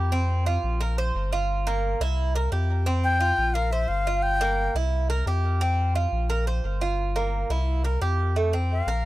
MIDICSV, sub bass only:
0, 0, Header, 1, 2, 480
1, 0, Start_track
1, 0, Tempo, 343249
1, 169, Time_signature, 4, 2, 24, 8
1, 12658, End_track
2, 0, Start_track
2, 0, Title_t, "Sub bass"
2, 0, Program_c, 0, 38
2, 0, Note_on_c, 0, 41, 96
2, 808, Note_off_c, 0, 41, 0
2, 888, Note_on_c, 0, 34, 99
2, 1557, Note_off_c, 0, 34, 0
2, 1604, Note_on_c, 0, 31, 104
2, 2725, Note_off_c, 0, 31, 0
2, 2799, Note_on_c, 0, 36, 99
2, 3472, Note_off_c, 0, 36, 0
2, 3522, Note_on_c, 0, 41, 92
2, 4645, Note_off_c, 0, 41, 0
2, 4725, Note_on_c, 0, 34, 98
2, 5396, Note_off_c, 0, 34, 0
2, 5436, Note_on_c, 0, 31, 102
2, 6562, Note_off_c, 0, 31, 0
2, 6636, Note_on_c, 0, 36, 101
2, 7311, Note_off_c, 0, 36, 0
2, 7357, Note_on_c, 0, 41, 92
2, 8483, Note_off_c, 0, 41, 0
2, 8558, Note_on_c, 0, 34, 111
2, 9233, Note_off_c, 0, 34, 0
2, 9287, Note_on_c, 0, 31, 92
2, 10408, Note_off_c, 0, 31, 0
2, 10481, Note_on_c, 0, 36, 104
2, 11155, Note_off_c, 0, 36, 0
2, 11207, Note_on_c, 0, 41, 87
2, 12329, Note_off_c, 0, 41, 0
2, 12396, Note_on_c, 0, 34, 99
2, 12658, Note_off_c, 0, 34, 0
2, 12658, End_track
0, 0, End_of_file